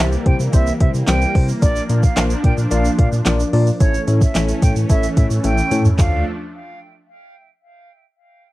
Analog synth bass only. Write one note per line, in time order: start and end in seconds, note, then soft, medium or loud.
0.00 0.16 C2 loud
0.26 0.35 C3 loud
0.40 0.48 C3 medium
0.53 0.71 C2 loud
0.81 0.89 C3 loud
0.94 1.03 C3 loud
1.08 1.26 C2 loud
1.35 1.53 C3 loud
1.62 1.80 A#1 loud
1.90 2.07 A#2 loud
2.17 2.35 A#1 loud
2.44 2.53 A#2 loud
2.58 2.67 A#2 loud
2.71 2.89 A#1 loud
2.99 3.08 A#2 loud
3.12 3.21 A#2 loud
3.26 3.44 A#1 loud
3.53 3.71 A#2 loud
3.81 3.98 A1 loud
4.08 4.26 A2 loud
4.35 4.53 A1 loud
4.62 4.71 A2 loud
4.76 4.85 A2 loud
4.90 5.07 A1 loud
5.17 5.26 A2 loud
5.30 5.39 A2 loud
5.44 5.62 A1 loud
5.71 5.89 A2 loud
5.99 6.24 D2 loud